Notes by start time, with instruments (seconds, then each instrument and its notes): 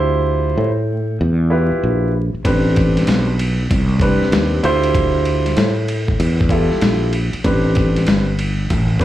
Already playing: fretless electric bass D2, grand piano E4 F4 G4 C5
0.57 fretless electric bass A2
1.21 fretless electric bass E2
1.50 grand piano E4 F4 G4 B4
1.72 muted fretless electric bass stroke
1.83 fretless electric bass A#1
2.34 muted fretless electric bass stroke
2.44 fretless electric bass A1, grand piano C4 D4 G4 B4, kick, ride
2.76 kick, ride
2.97 snare, ride
3.07 fretless electric bass B1, snare, hi-hat pedal, ride
3.39 ride
3.71 fretless electric bass C2, kick, ride
4.00 grand piano C4 D4 G4 B4, kick, ride
4.22 muted fretless electric bass stroke, snare
4.32 fretless electric bass D#2, snare, hi-hat pedal, ride
4.63 fretless electric bass D2, grand piano E4 F4 G4 C5, ride
4.84 ride
4.95 kick, ride
5.25 ride
5.46 snare, ride
5.57 fretless electric bass A2, snare, hi-hat pedal, ride
5.88 ride
6.08 kick
6.20 fretless electric bass E2, ride
6.41 kick
6.49 grand piano E4 F4 G4 A4, kick, ride
6.71 muted fretless electric bass stroke, snare
6.81 fretless electric bass A#1, snare, hi-hat pedal, ride
7.13 ride
7.33 muted fretless electric bass stroke, ride
7.44 fretless electric bass A1, grand piano C4 D4 G4 B4, kick, ride
7.75 kick, ride
7.96 snare, ride
8.07 fretless electric bass G1, snare, hi-hat pedal, ride
8.39 ride
8.70 fretless electric bass A1, kick, ride
9.00 grand piano C4 D4 G4 B4, kick, ride